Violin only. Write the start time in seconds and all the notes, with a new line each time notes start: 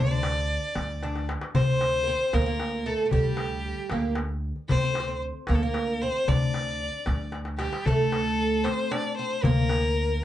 Already playing: D5
1.56 C5
2.34 A#4
2.86 A4
3.11 G4
4.69 C5
5.49 A#4
5.55 A4
5.62 A#4
6.02 C5
6.28 D5
7.58 G4
7.85 A4
8.64 C5
8.91 D5
9.17 C5
9.43 A#4